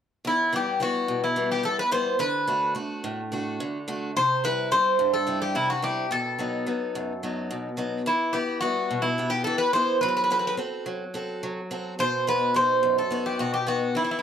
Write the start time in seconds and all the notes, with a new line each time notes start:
0.25 E2 E4
0.53 E3 G3 B3 G4
0.80 E3 G3 B3 F#4
1.08 B2
1.24 E4
1.36 E3 G3 B3
1.51 G4
1.63 E2 A4
1.79 B4
1.91 E3 G3 B3 C5
2.19 D3 B4
2.47 A3 D4 F#4
2.75 A3 D4 F#4
3.04 A2
3.32 A3 D4 F#4
3.60 D3
3.88 A3 D4 F#4
4.17 C3 C5
4.44 G3 C4 E4 B4
4.71 G3 C4 E4 C5
4.99 G2
5.14 A4
5.27 G3 C4 E4
5.42 G4
5.55 C3 E4
5.70 F#4
5.82 G3 C4 E4 G4
6.11 B2 A4
6.39 F#3 B3 D#4
6.67 F#3 B3 D#4
6.95 F#2
7.23 F#3 B3 D#4
7.51 B2
7.77 F#3 B3 D#4
8.06 E3 E4
8.33 B3 E4 G4
8.61 G3 B3 E4 F#4
8.91 B2
9.02 E4
9.18 B3 E4 G4
9.30 G4
9.44 E3 A4
9.58 B4
9.73 B3 E4 G4 C5
10.01 F#3 B4
10.08 B4
10.17 B4
10.24 B4
10.30 C4 F#4 A4 B4
10.39 B4
10.47 B4
10.57 C4 F#4 A4
10.86 F#3
11.14 C4 F#4 A4
11.43 F#3
11.71 C4 F#4 A4
11.99 B2 C5
12.27 B3 D#4 F#4 B4
12.54 B2 D#4 F#4 C5
12.83 F#2
12.98 A4
13.11 B3 D#4 F#4
13.26 G4
13.39 B2 F#4
13.54 G4
13.67 B3 D#4 F#4
13.95 E3 E4
14.04 E4
14.11 E4
14.19 E4